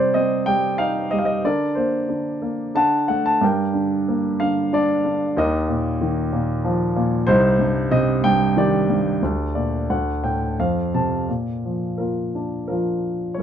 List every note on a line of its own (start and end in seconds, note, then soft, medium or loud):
0.00 1.39 C3 medium
0.00 0.46 G3 soft
0.00 1.46 C5 medium
0.00 1.45 D5 medium
0.14 1.40 C4 soft
0.14 0.48 D#5 medium
0.46 1.11 G3 soft
0.46 0.76 G5 medium
0.78 1.42 D#4 medium
0.78 1.12 F5 medium
1.11 1.43 G3 soft
1.11 1.18 D#5 medium
1.19 1.25 F5 medium
1.25 1.44 D#5 medium
1.45 2.07 D3 medium
1.45 2.39 A#4 medium
1.45 1.74 D5 medium
1.75 2.41 A#3 soft
1.75 2.37 C5 medium
2.09 2.73 D3 soft
2.42 2.74 A#3 soft
2.75 3.40 D3 medium
2.75 3.07 F#5 medium
2.75 3.07 A5 medium
3.08 3.41 A3 soft
3.08 3.24 F#5 medium
3.26 3.43 A5 medium
3.41 5.32 G2 medium
3.41 4.37 A#4 soft
3.41 4.05 G5 medium
3.74 4.39 D3 soft
4.08 5.33 A#3 soft
4.40 5.03 D3 soft
4.40 4.73 F5 medium
4.73 5.35 D4 soft
4.73 5.39 D5 medium
5.05 5.35 D3 soft
5.37 7.23 D#2 medium
5.37 6.92 A#4 medium
5.37 6.92 D#5 medium
5.68 6.31 A#2 soft
6.01 7.24 D#3 soft
6.33 6.95 A#2 medium
6.64 7.26 F3 medium
6.96 7.27 A#2 medium
7.27 9.19 C2 medium
7.27 8.20 D#4 medium
7.27 7.93 C5 medium
7.59 8.22 G2 soft
7.91 9.19 C3 medium
7.91 8.25 D#5 medium
8.24 8.88 G2 soft
8.24 8.58 G5 medium
8.57 9.21 D#3 medium
8.57 10.54 G4 soft
8.57 9.54 D5 medium
8.90 9.22 G2 soft
9.22 9.87 D2 medium
9.55 9.88 A#2 soft
9.55 9.87 D5 soft
9.90 10.56 D2 soft
9.90 10.21 F#5 medium
10.24 10.57 A2 soft
10.24 10.55 G5 medium
10.60 11.27 F2 medium
10.60 10.91 F5 medium
10.94 11.28 C3 soft
10.94 11.27 A5 soft
11.29 13.35 A#2 soft
11.65 12.67 F3 soft
11.98 13.35 A#3 soft
11.98 12.66 F4 soft
11.98 12.66 A#4 soft
12.35 13.36 D4 soft
12.68 13.37 F3 soft
12.68 13.36 F4 soft
12.68 13.38 A#4 soft
13.34 13.43 F#2 soft
13.34 13.43 C#5 soft
13.39 13.43 A#4 soft